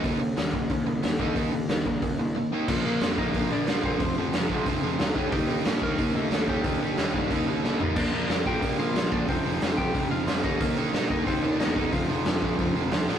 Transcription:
<<
  \new Staff \with { instrumentName = "Lead electric guitar" } { \time 4/4 \key ees \lydian \tempo 4 = 182 r1 | r1 | <bes bes'>4. <ees' ees''>4 <d' d''>4 <c' c''>8~ | <c' c''>4. r2 r8 |
<g g'>4. <bes bes'>4 <a a'>4 <g g'>8~ | <g g'>4. r2 r8 | <d' d''>4. <g' g''>4 <f' f''>4 <d' d''>8 | <c' c''>4. <g' g''>4 <f' f''>4 <ees' ees''>8 |
<bes bes'>4 r8 <ees' ees''>8 <c' c''>8. <d' d''>16 <ees' ees''>4 | <f' f''>2. r4 | }
  \new Staff \with { instrumentName = "Overdriven electric guitar" } { \clef bass \time 4/4 \key ees \lydian <ees bes ees'>8 <ees bes>8 <ees bes>8 <ees bes>8 <ees bes>8 <ees bes>8 <ees bes>8 <ees bes ees'>8 | <ees bes ees'>8 <ees bes>8 <ees bes>8 <ees bes>8 <ees bes>8 <ees bes>8 <ees bes>8 <ees bes ees'>8 | <bes, f bes>8 <bes, f bes>8 <bes, f bes>8 <bes, f bes>8 <bes, f bes>8 <bes, f bes>8 <bes, f bes>8 <bes, f bes>8 | <f, c f>8 <f, c f>8 <f, c f>8 <f, c f>8 <f, c f>8 <f, c f>8 <f, c f>8 <ees bes ees'>8 |
<ees bes ees'>8 <ees bes ees'>8 <ees bes ees'>8 <ees bes ees'>8 <ees bes ees'>8 <ees bes ees'>8 <ees bes ees'>8 <ees bes ees'>8 | <ees bes ees'>8 <ees bes ees'>8 <ees bes ees'>8 <ees bes ees'>8 <ees bes ees'>8 <ees bes ees'>8 <ees bes ees'>8 <ees bes ees'>8 | <bes, f bes>8 <bes, f bes>8 <bes, f bes>8 <bes, f bes>8 <bes, f bes>8 <bes, f bes>8 <bes, f bes>8 <bes, f bes>8 | <f, c f>8 <f, c f>8 <f, c f>8 <f, c f>8 <f, c f>8 <f, c f>8 <f, c f>8 <ees bes ees'>8 |
<ees bes ees'>8 <ees bes ees'>8 <ees bes ees'>8 <ees bes ees'>8 <ees bes ees'>8 <ees bes ees'>8 <ees bes ees'>8 <ees bes ees'>8 | <f, c f>8 <f, c f>8 <f, c f>8 <f, c f>8 <f, c f>8 <f, c f>8 <f, c f>8 <f, c f>8 | }
  \new Staff \with { instrumentName = "Overdriven electric guitar" } { \clef bass \time 4/4 \key ees \lydian <ees bes ees'>8 <ees bes>8 <ees bes>8 <ees bes>8 <ees bes>8 <ees bes>8 <ees bes>8 <ees bes ees'>8 | <ees bes ees'>8 <ees bes>8 <ees bes>8 <ees bes>8 <ees bes>8 <ees bes>8 <ees bes>8 <ees bes ees'>8 | <bes, f bes>8 <bes, f bes>8 <bes, f bes>8 <bes, f bes>8 <bes, f bes>8 <bes, f bes>8 <bes, f bes>8 <bes, f bes>8 | <f, c f>8 <f, c f>8 <f, c f>8 <f, c f>8 <f, c f>8 <f, c f>8 <f, c f>8 <ees bes ees'>8 |
<ees bes ees'>8 <ees bes ees'>8 <ees bes ees'>8 <ees bes ees'>8 <ees bes ees'>8 <ees bes ees'>8 <ees bes ees'>8 <ees bes ees'>8 | <ees bes ees'>8 <ees bes ees'>8 <ees bes ees'>8 <ees bes ees'>8 <ees bes ees'>8 <ees bes ees'>8 <ees bes ees'>8 <ees bes ees'>8 | <bes, f bes>8 <bes, f bes>8 <bes, f bes>8 <bes, f bes>8 <bes, f bes>8 <bes, f bes>8 <bes, f bes>8 <bes, f bes>8 | <f, c f>8 <f, c f>8 <f, c f>8 <f, c f>8 <f, c f>8 <f, c f>8 <f, c f>8 <ees bes ees'>8 |
<ees bes ees'>8 <ees bes ees'>8 <ees bes ees'>8 <ees bes ees'>8 <ees bes ees'>8 <ees bes ees'>8 <ees bes ees'>8 <ees bes ees'>8 | <f, c f>8 <f, c f>8 <f, c f>8 <f, c f>8 <f, c f>8 <f, c f>8 <f, c f>8 <f, c f>8 | }
  \new Staff \with { instrumentName = "Picked electric bass" } { \clef bass \time 4/4 \key ees \lydian ees,4 ees,8 bes,,8 ees,8 c,8 ees,8 ees,8 | ees,4 ees,8 bes,,8 ees,8 c,8 r4 | bes,,4 f,8 bes,,8 bes,,8 bes,,8 bes,,4 | f,,8 f,,8 f,,8 bes,,8 f,,8 f,,8 ees,8 ees,8 |
ees,4 bes,8 ees,8 ees,8 ees,8 ees,4 | ees,8 ees,8 ees,8 g,8 ees,8 ees,8 c,8 a,,8 | bes,,4 f,8 bes,,8 bes,,8 bes,,8 bes,,4 | f,,8 f,,8 f,,8 bes,,8 f,,8 f,,8 f,8 ees,8 |
ees,4 bes,8 ees,8 ees,8 ees,8 e,4 | f,,8 f,,8 f,,8 bes,,8 f,,8 f,,8 ees,8 a,,8 | }
  \new DrumStaff \with { instrumentName = "Drums" } \drummode { \time 4/4 <hho bd>4 <hho sn>8 bd8 <hho bd>4 <hho sn>8 bd8 | <hho bd>4 <hho sn>8 bd8 <hho bd>4 r4 | <cymc bd>4 <hho sn>8 bd8 <hho bd>4 <hho sn>8 bd8 | <hho bd>4 <hho sn>8 bd8 <hho bd>4 <hho sn>8 bd8 |
<hho bd>4 <hho sn>8 bd8 <hho bd>4 <hho sn>8 bd8 | <hho bd>4 <hho sn>8 bd8 <hho bd>4 sn8 tomfh8 | <cymc bd>4 <hho sn>8 bd8 <hho bd>4 <hho sn>8 bd8 | <hho bd>4 <hho sn>8 bd8 <hho bd>4 <hho sn>8 bd8 |
<hho bd>4 <hho sn>8 bd8 <hho bd>4 <hho sn>8 bd8 | <hho bd>4 <hho sn>8 bd8 <hho bd>4 <hho sn>8 sn8 | }
>>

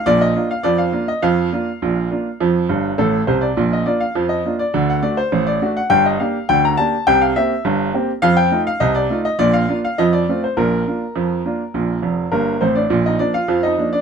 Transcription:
<<
  \new Staff \with { instrumentName = "Upright piano" } { \time 2/4 \key bes \major \tempo 4 = 103 d''16 ees''8 f''16 d''16 f''8 ees''16 | f''2~ | f''4 a'8 c''16 d''16~ | d''16 ees''16 d''16 f''8 ees''8 d''16~ |
d''16 fis''16 d''16 c''8 d''8 fis''16 | g''16 ees''16 f''8 g''16 bes''16 a''8 | g''16 f''16 e''8 r4 | f''16 g''8 f''16 ees''16 d''8 ees''16 |
d''16 f''8 f''16 ees''16 d''8 c''16 | bes'2~ | bes'4 <bes bes'>8 <c' c''>16 <d' d''>16~ | <d' d''>16 <ees' ees''>16 <d' d''>16 <f' f''>8 <ees' ees''>8 <d' d''>16 | }
  \new Staff \with { instrumentName = "Upright piano" } { \clef bass \time 2/4 \key bes \major <bes,, bes,>8 <bes d' f'>8 <f, f>8 <bes d' f'>8 | <f, f>8 <bes d' f'>8 <bes,, bes,>8 <bes d' f'>8 | <f, f>8 <g,, g,>8 <a,, a,>8 <c, c>8 | <bes,, bes,>8 <bes d' f'>8 <f, f>8 <bes d' f'>8 |
<d, d>8 <a d' fis'>8 <a,, a,>8 <a d' fis'>8 | <g,, g,>8 <bes d' g'>8 <d, d>8 <bes d' g'>8 | <c, c>8 <bes c' g'>8 <g,, g,>8 <bes c' g'>8 | <f, f>8 <a ees' f'>8 <c, c>8 <a ees' f'>8 |
<bes,, bes,>8 <bes d' f'>8 <f, f>8 <a c' f'>8 | <bes,, bes,>8 <bes d' f'>8 <f, f>8 <bes d' f'>8 | <bes,, bes,>8 <f,, f,>8 <g,, g,>8 <a,, a,>8 | <bes,, bes,>8 <f bes>8 <f, f>8 <f bes d'>8 | }
>>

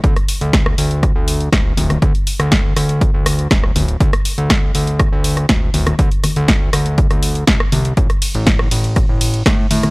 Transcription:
<<
  \new Staff \with { instrumentName = "Analog synth bass" } { \clef bass \time 4/4 \key d \dorian \tempo 4 = 121 d,16 r8 d,8. d,8. d,8. d,,8 d,,8 | d,16 r8 d,8. d,8. d,8. d,,8 d,,8 | d,16 r8 d,8. d,8. d,8. d,,8 d,,8 | d,16 r8 d,8. d,8. d,8. c,16 r16 c,8 |
a,,16 r8 a,,8. a,,8. a,,8. a,8 a,8 | }
  \new DrumStaff \with { instrumentName = "Drums" } \drummode { \time 4/4 <hh bd>16 <hh ss>16 hho16 hh16 <hh bd sn>16 ss16 hho16 hh16 <hh bd ss>8 hho16 hh16 <hh bd ss sn>8 <cgl hho>16 <cgl hh ss>16 | <hh bd>16 hh16 hho16 <hh ss>16 <hh bd sn>8 <hho ss>16 hh16 <hh bd>8 <hho ss>16 hh16 <hh bd sn>16 ss16 <cgl hho>16 hh16 | <hh bd>16 <hh ss>16 hho16 hh16 <hh bd ss sn>8 hho16 hh16 <hh bd ss>8 hho16 <hh ss>16 <hh bd sn>8 <cgl hho>16 <cgl hh ss>16 | <hh bd>16 hh16 <cgl hho ss>16 hh16 <hh bd sn>8 <hho ss>16 hh16 <hh bd>16 <hh ss>16 hho16 hh16 <hh bd sn>16 ss16 <cgl hho>16 hh16 |
<hh bd>16 <hh ss>16 <hho cymr>16 hh16 <hh bd sn>16 ss16 <hho cymr>16 hh16 <hh bd ss>8 <hho cymr>16 hh16 <hh bd ss sn>8 <cgl hho cymr>16 <cgl hh ss>16 | }
>>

